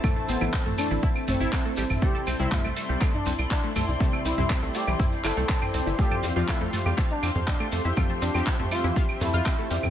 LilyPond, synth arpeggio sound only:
\new Staff \with { instrumentName = "Synth arpeggio sound" } { \time 4/4 \key c \major \tempo 4 = 121 <a a'>16 <a a'>16 <c' c''>16 <e' e''>16 <c' c''>16 <a a'>16 <a a'>16 <e e'>16 <e' e''>16 r16 <a a'>16 <e' e''>16 <c' c''>16 <a a'>16 <g g'>16 r16 | <a a'>16 <a' a''>16 <c' c''>16 <e' e''>16 <a a'>16 <a a'>16 <a a'>16 <g g'>16 <a a'>16 r16 <c' c''>16 r8 <a a'>16 <a a'>16 r16 | <a a'>16 <a a'>16 <c' c''>16 <e' e''>16 <c' c''>16 <a a'>16 <a a'>16 <e e'>16 <e' e''>16 r16 <e' e''>16 <a a'>16 <c' c''>16 <c' c''>16 <c' c''>16 <e e'>16 | <a a'>16 <a' a''>16 <c' c''>16 <f' f''>16 <a a'>16 <a a'>16 <a a'>16 <g g'>16 <a a'>16 r16 <c' c''>16 r8 <a a'>16 <a a'>16 <e' e''>16 |
<a a'>16 <a a'>16 <c' c''>16 r16 <c' c''>16 <a a'>16 <a a'>16 <e e'>16 <f' f''>16 r16 <a a'>16 <f' f''>16 <c' c''>16 <a a'>16 <g g'>16 r16 | }